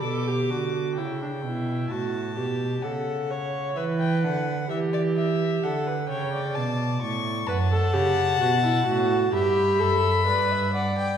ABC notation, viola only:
X:1
M:4/4
L:1/16
Q:1/4=64
K:G
V:1 name="Viola"
A G F2 E D E2 F2 G2 A2 ^c2 | B4 G4 A B ^c d4- d | [K:F#phr] B A G2 F E F2 G2 A2 B2 d2 |]